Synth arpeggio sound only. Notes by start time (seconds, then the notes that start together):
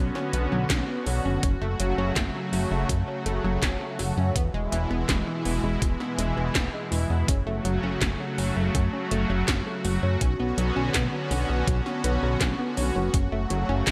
0.15 C#4
0.34 B3
0.52 F#3
0.70 C#4
0.89 B3
1.07 F#3
1.25 C#4
1.43 C#4
1.62 A3
1.80 F#3
1.98 C#4
2.17 A3
2.35 F#3
2.53 C#4
2.71 A3
2.90 F#3
3.08 C#4
3.26 A3
3.44 F#3
3.63 C#4
3.81 A3
3.99 F#3
4.18 C#4
4.36 B3
4.54 G#3
4.72 E3
4.91 B3
5.09 G#3
5.27 E3
5.46 B3
5.64 G#3
5.82 E3
6.01 B3
6.19 G#3
6.37 E3
6.55 B3
6.74 G#3
6.92 E3
7.10 B3
7.28 C#4
7.47 A3
7.65 F#3
7.83 C#4
8.02 A3
8.20 F#3
8.38 C#4
8.57 A3
8.75 F#3
8.93 C#4
9.11 A3
9.30 F#3
9.48 C#4
9.67 A3
9.85 F#3
10.03 C#4
10.21 C#4
10.40 B3
10.58 F#3
10.76 C#4
10.95 B3
11.13 F#3
11.31 C#4
11.50 B3
11.68 F#3
11.86 C#4
12.04 B3
12.23 F#3
12.41 C#4
12.59 B3
12.77 F#3
12.96 C#4
13.14 C#4
13.32 A3
13.51 F#3
13.69 C#4
13.87 A3